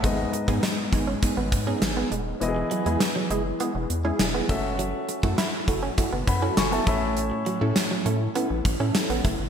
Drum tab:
HH |x-xxx-x-x-x-x-x-|x-xxx-x-x-x-x-x-|x-x-x-x-x-x-xxx-|x-x-x-x-x-x-xxx-|
SD |----o-------o---|----o-------o---|----o-------o---|----o-------o---|
BD |o--o--o-o-o-----|--------------o-|---o--o-o-o---o-|----------o---o-|